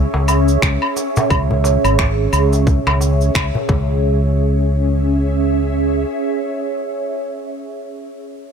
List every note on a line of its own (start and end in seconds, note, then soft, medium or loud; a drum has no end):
0.00 3.68 C#4 medium
0.00 3.69 G#4 medium
0.00 3.69 C#5 medium
0.00 3.69 E5 medium
0.14 0.56 C#2 medium
0.14 darbuka tek medium
0.28 darbuka ka soft
0.28 cabasa medium
0.28 low woodblock medium
0.48 cabasa soft
0.62 0.77 C#2 medium
0.62 finger snap medium
0.62 kick loud
0.62 cabasa soft
0.82 low woodblock medium
0.97 darbuka ka soft
0.97 cabasa medium
1.16 darbuka ka soft
1.16 darbuka tek medium
1.16 darbuka dum medium
1.16 cabasa soft
1.30 1.76 C#2 medium
1.30 kick medium
1.30 cabasa soft
1.30 low woodblock medium
1.51 darbuka dum medium
1.64 darbuka tek medium
1.64 cabasa medium
1.84 2.26 G#1 medium
1.84 cabasa soft
1.84 low woodblock medium
1.99 finger snap medium
1.99 kick loud
1.99 cabasa soft
2.33 2.78 C#2 medium
2.33 cabasa medium
2.33 low woodblock medium
2.53 darbuka ka soft
2.53 cabasa soft
2.67 kick medium
2.67 darbuka dum medium
2.67 cabasa soft
2.86 3.29 C#2 medium
2.86 finger snap soft
2.86 darbuka tek medium
2.86 low woodblock medium
3.01 darbuka ka soft
3.01 cabasa medium
3.21 cabasa soft
3.35 3.49 C#2 medium
3.35 finger snap medium
3.35 kick medium
3.35 cabasa soft
3.35 low woodblock medium
3.55 darbuka dum medium
3.69 6.04 C#2 medium
3.69 6.92 C#4 medium
3.69 kick loud
3.69 darbuka tek medium
3.81 7.03 G#4 medium
4.25 7.48 C#5 medium
4.34 7.52 E5 medium